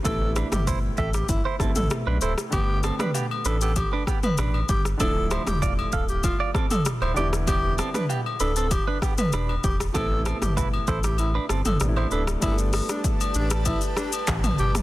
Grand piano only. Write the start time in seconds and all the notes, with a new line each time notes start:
0.03 C3 A3 B3
0.08 E4
1.59 C3 A3 B3 E4
2.50 D3 A3 B3
2.55 G4
4.97 D3 F3 A3
5.02 E4
7.14 D3 G3 B3
7.19 E4
9.93 B2 A3 B3
9.98 C3 E4
11.79 C3 A3 B3 D4
11.88 E4
12.40 G3 A3 B3 D4
12.45 G#4
12.51 A4